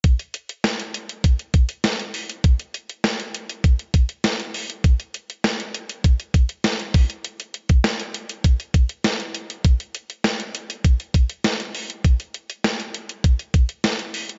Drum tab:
HH |xxxxxxxxxxxxxxox|xxxxxxxxxxxxxxox|xxxxxxxxxxxxxxox|xxxxxxxxxxxxxxxx|
SD |----o-------o---|----o-------o---|----o-------o---|----o-------o---|
BD |o-------o-o-----|o-------o-o-----|o-------o-o---o-|---o----o-o-----|

HH |xxxxxxxxxxxxxxox|xxxxxxxxxxxxxxox|
SD |----o-------o---|----o-------o---|
BD |o-------o-o-----|o-------o-o-----|